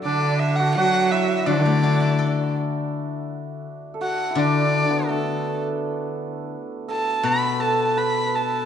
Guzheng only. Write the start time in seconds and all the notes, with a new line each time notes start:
Already playing: F#3 D4 F#4 A4 D5
1.46 D3
1.66 A3
1.83 D4
2.00 E4
2.19 A4
4.35 D3
7.23 B2